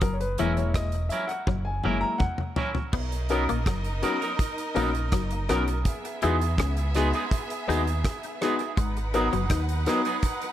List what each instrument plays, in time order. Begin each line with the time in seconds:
0.01 fingered electric bass F#1, clean electric guitar F#3, grand piano A#4, kick, closed hi-hat
0.13 grand piano C#5
0.20 grand piano B4, closed hi-hat
0.38 fingered electric bass E1, clean electric guitar E3 F#3 C#4 E4 A#4, grand piano G#3 A#3 E4, closed hi-hat
0.57 grand piano C#5, closed hi-hat
0.74 grand piano D#5, kick, cross-stick, closed hi-hat
0.92 closed hi-hat
1.09 clean electric guitar F#3 C#4 E4 A#4, grand piano E5, closed hi-hat
1.28 grand piano F#5, closed hi-hat
1.47 fingered electric bass F#1, clean electric guitar F#3, kick, high tom
1.65 grand piano G#5
1.84 fingered electric bass F#1, clean electric guitar F#3 C#4 E4 A#4, grand piano G#3 A#3 E4, mid tom
2.01 grand piano A#5
2.18 grand piano F#5, kick, mid tom
2.38 mid tom
2.56 clean electric guitar F#3 C#4 E4 A#4, floor tom
2.75 floor tom
2.93 fingered electric bass B1, clean electric guitar B3, violin section D#4 A#4 D#5, kick, crash
3.12 closed hi-hat
3.29 clean electric guitar F#3 B3 D#4 A#4, grand piano C#4 D#4 F#4 A#4, closed hi-hat
3.49 fingered electric bass A#1, clean electric guitar A#3, closed hi-hat
3.66 fingered electric bass F#1, clean electric guitar F#3, kick, cross-stick, closed hi-hat
3.84 closed hi-hat
4.02 clean electric guitar F#3 B3 D#4 A#4, grand piano C#4 D#4 F#4 A#4, closed hi-hat
4.21 clean electric guitar F#3 B3 D#4 A#4, closed hi-hat
4.39 kick, closed hi-hat
4.58 closed hi-hat
4.74 fingered electric bass A#1, clean electric guitar F#3 A#3 B3 D#4 A#4, grand piano C#4 D#4 F#4 A#4, closed hi-hat
4.95 closed hi-hat
5.12 fingered electric bass F#1, clean electric guitar F#3, kick, cross-stick, closed hi-hat
5.30 closed hi-hat
5.49 fingered electric bass B1, clean electric guitar F#3 B3 D#4 A#4, grand piano C#4 D#4 F#4 A#4, cross-stick, closed hi-hat
5.68 grand piano F#4 A#4, closed hi-hat
5.85 violin section B3 G#4 E5, kick, closed hi-hat
6.05 closed hi-hat
6.22 fingered electric bass E2, clean electric guitar G#3 B3 D#4 E4 G#4, grand piano B3 D#4 F#4 G#4, closed hi-hat
6.41 closed hi-hat
6.58 fingered electric bass C#2, clean electric guitar C#4, kick, cross-stick, closed hi-hat
6.77 closed hi-hat
6.94 clean electric guitar G#3 B3 D#4 G#4, grand piano B3 D#4 F#4 G#4, cross-stick, closed hi-hat
7.13 clean electric guitar G#3 B3 D#4 G#4, closed hi-hat
7.31 kick, closed hi-hat
7.50 closed hi-hat
7.68 fingered electric bass D#2, clean electric guitar G#3 B3 D#4 G#4, grand piano B3 D#4 F#4 G#4, closed hi-hat
7.87 closed hi-hat
8.04 kick, cross-stick, closed hi-hat
8.23 closed hi-hat
8.41 clean electric guitar G#3 B3 D#4 G#4, grand piano B3 D#4 F#4 G#4, cross-stick, closed hi-hat
8.59 grand piano F#4 G#4, closed hi-hat
8.77 fingered electric bass G#1, clean electric guitar G#3, violin section D#4 B4 F#5, kick, closed hi-hat
8.97 closed hi-hat
9.14 clean electric guitar F#3 B3 D#4 G#4, grand piano B3 D#4 F#4 A#4, closed hi-hat
9.33 fingered electric bass F#1, clean electric guitar F#3, closed hi-hat
9.50 fingered electric bass D#2, clean electric guitar D#4, kick, cross-stick, closed hi-hat
9.69 closed hi-hat
9.86 clean electric guitar F#3 B3 D#4 G#4, grand piano B3 D#4 F#4 A#4, cross-stick, closed hi-hat
10.05 clean electric guitar F#3 B3 D#4 G#4, closed hi-hat
10.23 kick, closed hi-hat
10.41 closed hi-hat